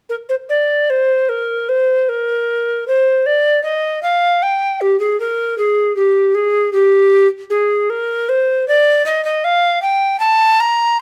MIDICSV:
0, 0, Header, 1, 2, 480
1, 0, Start_track
1, 0, Tempo, 798935
1, 56, Time_signature, 3, 2, 24, 8
1, 1496, Tempo, 773196
1, 6787, End_track
2, 0, Start_track
2, 0, Title_t, "Recorder"
2, 0, Program_c, 0, 74
2, 57, Note_on_c, 0, 70, 74
2, 93, Note_off_c, 0, 70, 0
2, 175, Note_on_c, 0, 72, 60
2, 211, Note_off_c, 0, 72, 0
2, 296, Note_on_c, 0, 74, 67
2, 541, Note_on_c, 0, 72, 73
2, 550, Note_off_c, 0, 74, 0
2, 776, Note_on_c, 0, 70, 75
2, 785, Note_off_c, 0, 72, 0
2, 1015, Note_on_c, 0, 72, 72
2, 1024, Note_off_c, 0, 70, 0
2, 1256, Note_on_c, 0, 70, 70
2, 1265, Note_off_c, 0, 72, 0
2, 1733, Note_off_c, 0, 70, 0
2, 1737, Note_on_c, 0, 72, 73
2, 1975, Note_on_c, 0, 74, 72
2, 1985, Note_off_c, 0, 72, 0
2, 2203, Note_off_c, 0, 74, 0
2, 2207, Note_on_c, 0, 75, 79
2, 2446, Note_off_c, 0, 75, 0
2, 2450, Note_on_c, 0, 77, 82
2, 2698, Note_on_c, 0, 79, 70
2, 2708, Note_off_c, 0, 77, 0
2, 2936, Note_on_c, 0, 67, 79
2, 2946, Note_off_c, 0, 79, 0
2, 3049, Note_off_c, 0, 67, 0
2, 3053, Note_on_c, 0, 68, 66
2, 3173, Note_off_c, 0, 68, 0
2, 3180, Note_on_c, 0, 70, 71
2, 3411, Note_off_c, 0, 70, 0
2, 3415, Note_on_c, 0, 68, 74
2, 3648, Note_off_c, 0, 68, 0
2, 3653, Note_on_c, 0, 67, 78
2, 3891, Note_on_c, 0, 68, 82
2, 3900, Note_off_c, 0, 67, 0
2, 4124, Note_off_c, 0, 68, 0
2, 4128, Note_on_c, 0, 67, 85
2, 4467, Note_off_c, 0, 67, 0
2, 4607, Note_on_c, 0, 68, 76
2, 4854, Note_on_c, 0, 70, 81
2, 4863, Note_off_c, 0, 68, 0
2, 5097, Note_on_c, 0, 72, 88
2, 5106, Note_off_c, 0, 70, 0
2, 5335, Note_off_c, 0, 72, 0
2, 5339, Note_on_c, 0, 74, 97
2, 5570, Note_off_c, 0, 74, 0
2, 5574, Note_on_c, 0, 75, 84
2, 5686, Note_off_c, 0, 75, 0
2, 5690, Note_on_c, 0, 75, 87
2, 5813, Note_on_c, 0, 77, 94
2, 5822, Note_off_c, 0, 75, 0
2, 6044, Note_off_c, 0, 77, 0
2, 6048, Note_on_c, 0, 79, 93
2, 6277, Note_off_c, 0, 79, 0
2, 6281, Note_on_c, 0, 81, 99
2, 6533, Note_on_c, 0, 82, 104
2, 6542, Note_off_c, 0, 81, 0
2, 6779, Note_off_c, 0, 82, 0
2, 6787, End_track
0, 0, End_of_file